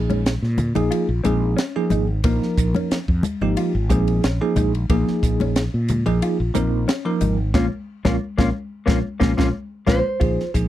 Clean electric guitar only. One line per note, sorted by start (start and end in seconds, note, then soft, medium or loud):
0.10 0.38 C#4 medium
0.75 0.89 D#4 medium
0.91 1.20 F4 medium
1.24 1.53 C4 medium
1.57 1.86 C#4 medium
1.92 2.20 D#4 medium
2.24 2.53 A#3 medium
2.76 3.04 C#4 medium
3.42 3.55 D#4 medium
3.57 3.86 F4 medium
3.91 4.19 C4 medium
4.24 4.53 C#4 medium
4.57 4.86 D#4 medium
4.90 5.19 A#3 medium
5.42 5.70 C#4 medium
6.07 6.20 D#4 medium
6.23 6.51 F4 medium
6.56 6.85 C4 medium
6.88 7.17 C#4 medium
7.21 7.50 D#4 medium
7.54 7.66 A#3 medium
7.54 7.66 C#4 medium
7.54 7.66 F4 medium
8.05 8.15 A#3 medium
8.05 8.15 C#4 medium
8.05 8.15 F4 medium
8.38 8.48 A#3 medium
8.38 8.48 C#4 medium
8.38 8.48 F4 medium
8.86 8.98 A#3 medium
8.86 8.98 C#4 medium
8.86 8.98 F4 medium
9.20 9.31 A#3 medium
9.20 9.31 C#4 medium
9.20 9.31 F4 medium
9.37 9.48 A#3 medium
9.37 9.48 C#4 medium
9.37 9.48 F4 loud
9.87 9.98 A#3 medium
9.87 9.98 C#4 medium
9.87 9.98 F4 medium
10.20 10.49 F4 medium